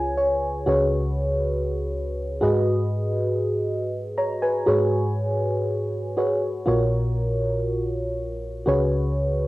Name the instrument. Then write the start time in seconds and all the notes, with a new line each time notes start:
fm electric piano
Already playing: C#2 C#3 F4 G#4 B4 C#5 G#5
0.18 C#5
0.66 C#2 C#3 F#4 G#4 B4 C#5
2.41 G#2 F#4 G#4 B4 D#5
4.17 C#5 A#5
4.42 B4 G#5
4.66 G#2 F#4 G#4 B4 C#5
6.17 F#4 G#4 B4 C#5
6.66 A#1 A#2 F4 F#4 A#4 C#5
8.66 C#2 C#3 F#4 G#4 B4 C#5